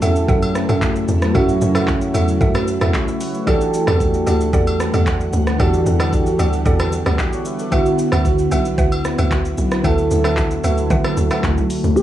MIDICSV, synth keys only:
0, 0, Header, 1, 2, 480
1, 0, Start_track
1, 0, Tempo, 530973
1, 1219, Time_signature, 4, 2, 24, 8
1, 10871, End_track
2, 0, Start_track
2, 0, Title_t, "Synth keys"
2, 0, Program_c, 0, 88
2, 0, Control_c, 0, 64, 127
2, 0, Note_on_c, 0, 54, 96
2, 0, Note_on_c, 0, 61, 91
2, 0, Note_on_c, 0, 64, 88
2, 0, Note_on_c, 0, 69, 108
2, 10, Note_off_c, 0, 54, 0
2, 10, Note_on_c, 0, 54, 94
2, 22, Note_off_c, 0, 61, 0
2, 22, Note_on_c, 0, 61, 79
2, 34, Note_off_c, 0, 64, 0
2, 34, Note_on_c, 0, 64, 81
2, 46, Note_on_c, 0, 67, 80
2, 92, Note_off_c, 0, 67, 0
2, 103, Note_off_c, 0, 69, 0
2, 103, Note_on_c, 0, 69, 99
2, 785, Note_off_c, 0, 54, 0
2, 790, Note_off_c, 0, 61, 0
2, 796, Note_off_c, 0, 64, 0
2, 831, Note_off_c, 0, 69, 0
2, 1208, Note_on_c, 0, 54, 116
2, 1221, Note_on_c, 0, 61, 113
2, 1233, Note_on_c, 0, 64, 111
2, 1244, Note_on_c, 0, 66, 127
2, 1794, Note_off_c, 0, 54, 0
2, 1800, Note_off_c, 0, 61, 0
2, 1806, Note_off_c, 0, 64, 0
2, 1812, Note_off_c, 0, 66, 0
2, 1926, Note_on_c, 0, 54, 87
2, 1938, Note_on_c, 0, 61, 85
2, 1951, Note_on_c, 0, 64, 81
2, 1963, Note_on_c, 0, 66, 99
2, 2431, Note_off_c, 0, 66, 0
2, 2665, Note_on_c, 0, 73, 68
2, 2671, Note_on_c, 0, 66, 58
2, 2703, Note_off_c, 0, 54, 0
2, 2709, Note_off_c, 0, 61, 0
2, 2715, Note_off_c, 0, 64, 0
2, 2781, Note_off_c, 0, 73, 0
2, 2784, Note_off_c, 0, 66, 0
2, 2790, Note_on_c, 0, 76, 78
2, 2796, Note_on_c, 0, 71, 66
2, 2897, Note_off_c, 0, 76, 0
2, 2900, Note_off_c, 0, 71, 0
2, 2904, Note_on_c, 0, 78, 75
2, 2910, Note_on_c, 0, 73, 62
2, 3018, Note_off_c, 0, 73, 0
2, 3020, Note_off_c, 0, 78, 0
2, 3029, Note_on_c, 0, 73, 70
2, 3035, Note_on_c, 0, 66, 58
2, 3126, Note_on_c, 0, 52, 119
2, 3134, Note_off_c, 0, 66, 0
2, 3135, Note_on_c, 0, 62, 109
2, 3145, Note_on_c, 0, 66, 103
2, 3152, Control_c, 0, 64, 0
2, 3153, Note_on_c, 0, 67, 110
2, 3162, Note_on_c, 0, 69, 127
2, 3255, Note_off_c, 0, 73, 0
2, 3328, Control_c, 0, 64, 127
2, 3713, Note_off_c, 0, 52, 0
2, 3717, Note_off_c, 0, 62, 0
2, 3722, Note_off_c, 0, 66, 0
2, 3726, Note_off_c, 0, 67, 0
2, 3731, Note_off_c, 0, 69, 0
2, 3848, Note_on_c, 0, 52, 89
2, 3856, Note_on_c, 0, 62, 78
2, 3866, Note_on_c, 0, 66, 84
2, 3875, Note_on_c, 0, 67, 80
2, 3883, Note_on_c, 0, 69, 102
2, 4623, Note_off_c, 0, 52, 0
2, 4628, Note_off_c, 0, 62, 0
2, 4633, Note_off_c, 0, 66, 0
2, 4637, Note_off_c, 0, 67, 0
2, 4641, Note_off_c, 0, 69, 0
2, 5047, Note_on_c, 0, 52, 120
2, 5057, Note_on_c, 0, 62, 113
2, 5065, Note_on_c, 0, 66, 109
2, 5075, Note_on_c, 0, 67, 108
2, 5083, Note_on_c, 0, 69, 127
2, 5633, Note_off_c, 0, 52, 0
2, 5638, Note_off_c, 0, 62, 0
2, 5642, Note_off_c, 0, 66, 0
2, 5647, Note_off_c, 0, 67, 0
2, 5651, Note_off_c, 0, 69, 0
2, 5767, Note_on_c, 0, 52, 95
2, 5776, Note_on_c, 0, 62, 81
2, 5785, Note_on_c, 0, 66, 82
2, 5794, Note_on_c, 0, 67, 84
2, 5803, Note_on_c, 0, 69, 96
2, 6499, Note_off_c, 0, 69, 0
2, 6505, Note_on_c, 0, 74, 71
2, 6510, Note_on_c, 0, 69, 59
2, 6543, Note_off_c, 0, 52, 0
2, 6548, Note_off_c, 0, 62, 0
2, 6552, Note_off_c, 0, 66, 0
2, 6556, Note_off_c, 0, 67, 0
2, 6621, Note_off_c, 0, 74, 0
2, 6624, Note_off_c, 0, 69, 0
2, 6631, Note_on_c, 0, 78, 75
2, 6636, Note_on_c, 0, 73, 67
2, 6737, Note_off_c, 0, 78, 0
2, 6740, Note_off_c, 0, 73, 0
2, 6745, Note_on_c, 0, 76, 69
2, 6750, Note_on_c, 0, 71, 60
2, 6861, Note_off_c, 0, 76, 0
2, 6864, Note_off_c, 0, 71, 0
2, 6871, Note_on_c, 0, 74, 73
2, 6878, Note_on_c, 0, 69, 62
2, 6967, Note_on_c, 0, 50, 122
2, 6979, Note_on_c, 0, 59, 105
2, 6991, Control_c, 0, 64, 0
2, 6991, Note_on_c, 0, 64, 108
2, 7004, Note_on_c, 0, 66, 127
2, 7096, Note_off_c, 0, 74, 0
2, 7099, Note_off_c, 0, 69, 0
2, 7145, Control_c, 0, 64, 127
2, 7553, Note_off_c, 0, 50, 0
2, 7559, Note_off_c, 0, 59, 0
2, 7565, Note_off_c, 0, 64, 0
2, 7571, Note_off_c, 0, 66, 0
2, 7688, Note_on_c, 0, 50, 88
2, 7701, Note_on_c, 0, 59, 85
2, 7712, Note_on_c, 0, 64, 85
2, 7724, Note_on_c, 0, 66, 103
2, 8464, Note_off_c, 0, 50, 0
2, 8470, Note_off_c, 0, 59, 0
2, 8476, Note_off_c, 0, 64, 0
2, 8482, Note_off_c, 0, 66, 0
2, 8889, Note_on_c, 0, 50, 114
2, 8901, Note_on_c, 0, 59, 109
2, 8914, Note_on_c, 0, 64, 108
2, 8925, Note_on_c, 0, 69, 124
2, 9474, Note_off_c, 0, 50, 0
2, 9480, Note_off_c, 0, 59, 0
2, 9486, Note_off_c, 0, 64, 0
2, 9492, Note_off_c, 0, 69, 0
2, 9608, Note_on_c, 0, 50, 94
2, 9621, Note_on_c, 0, 59, 82
2, 9632, Note_on_c, 0, 64, 85
2, 9644, Note_on_c, 0, 66, 100
2, 10384, Note_off_c, 0, 50, 0
2, 10390, Note_off_c, 0, 59, 0
2, 10396, Note_off_c, 0, 64, 0
2, 10402, Note_off_c, 0, 66, 0
2, 10791, Note_on_c, 0, 52, 61
2, 10810, Note_on_c, 0, 62, 56
2, 10830, Control_c, 0, 64, 0
2, 10871, Note_off_c, 0, 52, 0
2, 10871, Note_off_c, 0, 62, 0
2, 10871, End_track
0, 0, End_of_file